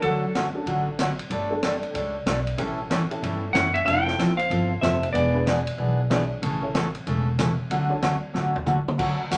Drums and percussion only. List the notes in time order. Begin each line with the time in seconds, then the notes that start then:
0.02 ride
0.35 snare, hi-hat pedal, ride
0.67 ride
0.99 snare, hi-hat pedal, ride
1.19 ride
1.30 ride
1.63 snare, hi-hat pedal, ride
1.83 ride
1.95 ride
2.26 snare, hi-hat pedal, ride
2.47 ride
2.58 ride
2.91 snare, hi-hat pedal, ride
3.11 ride
3.23 ride
3.55 snare, hi-hat pedal, ride
3.75 ride
3.88 ride
4.08 snare
4.19 snare, hi-hat pedal, ride
4.39 ride
4.51 ride
4.83 snare, hi-hat pedal, ride
5.03 ride
5.15 ride
5.47 snare, hi-hat pedal, ride
5.67 ride
6.11 snare, hi-hat pedal, ride
6.43 ride
6.75 snare, hi-hat pedal, ride
6.95 ride
7.07 ride
7.39 snare, hi-hat pedal, ride
7.71 ride
8.02 snare, hi-hat pedal, ride
8.35 snare
8.56 floor tom
8.66 hi-hat pedal, high tom
8.88 high tom
8.99 kick, crash
9.31 hi-hat pedal, ride